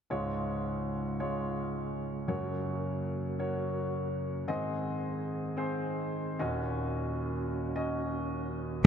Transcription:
0.10 grand piano C#2 G#2 G#3 F4 C#5, tonewheel organ C#3 G#3 F4
1.20 grand piano G#3 F4 C#5
2.28 grand piano F#2 C#3 A#3 F#4 C#5, tonewheel organ A#3 F#4
3.39 grand piano A#3 F#4 C#5
4.47 grand piano G#2 D#3 C4 G#4 D#5, tonewheel organ D#3 C4 G#4
5.57 grand piano C4 G#4 C5
6.39 grand piano D#2 A#2 C#4 F#4 D#5, tonewheel organ C#4 F#4
7.76 grand piano C#4 F#4 D#5

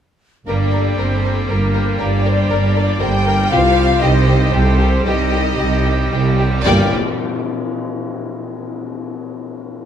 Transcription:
0.46 double bass section G1, tuba G1, trombone section G2 A#3, cello section G2, pipe organ G3 A#3 G4 G5, french horn section D4, viola section A#4, violin section A#4 D5, flute section D5
0.72 viola section A4, violin section A#4
0.97 double bass section G1, tuba G1, cello section G2, french horn section C4, violin section A#4 C5, flute section C5
1.25 violin section A#4
1.49 double bass section G1, tuba G1, cello section G2, french horn section A#3, flute section A#4, violin section A#4, viola section A#4
1.74 violin section A#4, viola section C5
1.99 double bass section G1, tuba G1, cello section G2, trombone section G2 A#3, french horn section D4, violin section A#4 D5, flute section D5, viola section D5
2.24 violin section A#4, viola section C5
2.50 double bass section G1, tuba G1, cello section G2, violin section A#4, viola section A#4
2.75 violin section A#4, viola section D5
3.00 double bass section G1, tuba G1, cello section G2, french horn section G4, violin section A#4 G5, viola section C5, flute section G5
3.26 violin section A#4, viola section A#4
3.50 double bass section C2, tuba C2, trombone section G2 C4, cello section C3, french horn section F4, violin section G4 F5, viola section C5, pipe organ C5, flute section F5
3.77 violin section G4
4.01 double bass section C2, tuba C2, cello section C3, french horn section D#4, violin section G4 D#5, flute section D#5
4.26 violin section G4
4.52 tuba C2, double bass section C2, cello section C3, french horn section C4, violin section G4 C5, viola section A4, flute section C5
4.78 violin section G4
5.04 double bass section C2, tuba C2, trombone section G2 C4, cello section C3, french horn section D#4, viola section G4, violin section G4 D#5, flute section D#5
5.32 violin section G4
5.58 double bass section C2, tuba C2, cello section C3, violin section G4
5.84 violin section G4
6.11 tuba C2, double bass section C2, cello section C3, violin section G4
6.38 violin section G4
6.64 tuba G1, double bass section G1, trombone section G2 A#3, cello section G2, pipe organ G3 G4 A#4 G5, viola section A#3 G4, french horn section G4, violin section D5 G5, flute section G5, tam-tam

